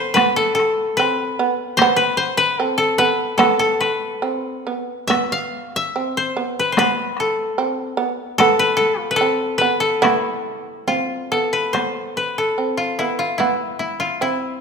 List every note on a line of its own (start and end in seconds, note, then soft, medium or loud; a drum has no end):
0.00 0.14 B3 medium
0.00 0.36 A4 medium
0.00 0.20 C5 loud
0.14 0.97 B3 medium
0.14 0.96 B4 loud
0.14 taiko rim medium
0.14 taiko high medium
0.36 0.54 A4 loud
0.55 2.45 A4 medium
0.59 taiko rim soft
0.97 1.39 C4 medium
0.97 1.83 B4 loud
1.39 1.78 B3 medium
1.77 2.02 C5 loud
1.77 taiko rim medium
1.77 taiko high medium
1.82 2.60 B3 loud
1.96 2.23 B4 loud
2.17 2.43 C5 medium
2.37 2.61 B4 loud
2.60 2.99 C4 medium
2.60 2.78 A4 loud
2.78 3.37 A4 loud
2.98 3.38 B3 medium
2.98 3.80 B4 loud
3.38 4.22 B3 loud
3.38 3.59 A4 medium
3.38 taiko rim medium
3.38 taiko high medium
3.59 5.50 A4 medium
3.81 5.58 B4 medium
3.81 taiko rim soft
4.22 4.65 C4 medium
4.67 5.09 B3 medium
5.08 5.95 B3 medium
5.08 5.38 E5 medium
5.08 taiko rim medium
5.08 taiko high medium
5.32 5.82 F5 medium
5.76 7.25 E5 loud
5.96 6.37 C4 medium
6.17 6.65 C5 medium
6.37 6.77 B3 medium
6.59 6.78 B4 medium
6.72 6.85 C5 medium
6.77 7.59 B3 loud
6.77 8.56 B4 medium
6.77 taiko rim medium
6.77 taiko high medium
7.17 8.38 A4 medium
7.17 taiko rim soft
7.58 7.99 C4 medium
7.97 8.39 B3 medium
8.38 9.22 B3 loud
8.38 8.76 A4 loud
8.38 taiko rim medium
8.38 taiko high medium
8.59 9.10 B4 loud
8.77 9.00 A4 loud
8.81 taiko high soft
9.00 9.16 F4 loud
9.11 9.58 B4 medium
9.16 9.80 A4 loud
9.21 9.63 C4 medium
9.58 10.01 B3 medium
9.58 11.36 B4 medium
9.80 11.31 A4 medium
10.02 10.87 B3 loud
10.02 12.28 E4 medium
10.02 taiko rim medium
10.02 taiko high medium
10.87 11.31 C4 medium
10.87 12.77 F4 medium
10.87 taiko high soft
11.32 11.73 B3 medium
11.32 12.38 A4 medium
11.53 11.79 B4 medium
11.73 12.58 B3 medium
11.73 12.23 C5 medium
11.73 taiko rim medium
11.73 taiko high soft
12.17 13.95 B4 medium
12.38 14.28 A4 medium
12.58 12.99 C4 medium
12.77 13.05 F4 medium
12.99 13.38 B3 medium
12.99 13.25 E4 medium
13.19 13.44 F4 medium
13.38 14.20 B3 medium
13.38 13.79 E4 medium
13.38 taiko rim soft
13.38 taiko high soft
13.79 14.06 E4 medium
13.79 taiko high soft
14.00 14.28 F4 medium
14.21 14.60 C4 medium
14.21 14.61 E4 medium